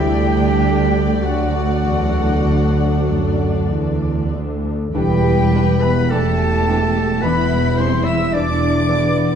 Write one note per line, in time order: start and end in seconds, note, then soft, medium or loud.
0.00 1.09 D2 medium
0.00 4.70 D2 medium
0.00 2.45 D3 soft
0.00 1.23 G3 medium
0.00 1.22 A3 medium
0.00 1.23 D4 medium
0.00 1.24 G4 medium
0.00 1.25 G4 medium
0.00 4.33 D5 medium
0.00 1.21 G5 medium
0.00 1.24 G5 medium
0.31 2.77 D4 soft
0.61 1.84 A4 soft
0.92 3.39 D5 soft
1.22 1.82 D2 medium
1.22 3.73 F#3 soft
1.22 4.70 A3 soft
1.22 4.70 D4 medium
1.22 3.71 F#4 medium
1.22 3.72 F#4 soft
1.22 3.72 F#5 soft
1.22 3.68 F#5 soft
1.22 3.69 A5 soft
1.54 4.01 D6 soft
1.85 2.48 E2 soft
1.85 3.07 A4 soft
2.16 4.63 A3 soft
2.47 3.11 D2 medium
2.47 4.99 D3 soft
2.78 6.68 D4 soft
3.08 3.72 F#2 medium
3.08 4.33 A4 soft
3.41 5.52 D5 soft
3.70 4.34 E2 medium
3.70 4.99 A5 soft
4.02 6.09 D6 soft
4.33 4.95 D2 soft
4.33 5.00 A4 soft
4.64 5.00 A3 soft
4.94 5.98 E1 medium
4.94 5.98 E2 medium
4.94 5.02 E3 medium
4.94 7.22 E3 soft
4.94 5.79 G3 medium
4.94 5.02 D4 soft
4.94 5.82 G4 medium
4.94 5.85 G4 medium
4.94 6.07 B4 medium
4.94 5.84 G5 medium
4.94 5.80 G5 medium
5.23 7.50 G3 soft
5.53 5.62 E3 soft
5.53 5.62 D4 soft
5.53 6.95 D5 soft
5.81 6.12 B3 medium
5.81 6.12 B4 medium
5.81 6.13 B4 medium
5.81 6.66 E5 soft
5.81 6.11 B5 medium
5.81 6.15 B5 medium
6.10 7.11 E1 medium
6.10 7.10 E2 medium
6.10 6.19 E3 soft
6.10 7.24 A3 medium
6.10 6.19 D4 soft
6.10 7.24 G4 medium
6.10 7.23 A4 medium
6.10 7.23 A5 medium
6.10 7.25 A5 medium
6.10 8.33 D6 soft
6.39 8.60 G5 soft
6.67 6.77 E3 soft
6.67 6.77 D4 soft
6.67 8.05 E5 soft
6.96 7.78 D5 soft
7.21 8.22 E1 medium
7.21 8.21 E2 medium
7.21 9.35 E3 soft
7.21 7.33 E3 soft
7.21 7.80 B3 medium
7.21 7.33 D4 soft
7.21 8.34 E4 medium
7.21 7.79 B4 medium
7.21 7.80 B4 medium
7.21 7.78 B5 medium
7.21 7.84 B5 medium
7.51 9.35 G3 soft
7.77 7.88 E3 soft
7.77 8.08 C4 medium
7.77 7.87 D4 soft
7.77 8.06 C5 medium
7.77 8.08 C5 medium
7.77 9.14 D5 soft
7.77 8.06 C6 medium
7.83 8.08 C6 medium
8.04 8.34 E5 medium
8.04 8.88 E5 soft
8.04 8.36 E5 medium
8.04 8.34 E6 medium
8.09 8.35 E4 medium
8.09 8.35 E6 medium
8.33 9.30 E1 medium
8.33 9.29 E2 medium
8.33 8.43 E3 soft
8.33 8.88 D4 soft
8.33 8.43 D4 soft
8.33 9.35 D5 medium
8.33 9.35 D6 soft
8.33 9.35 D6 medium
8.37 9.35 D4 medium
8.61 9.35 G5 soft
8.88 8.96 E3 soft
8.88 9.35 B3 medium
8.88 8.97 D4 medium
8.88 9.35 E5 soft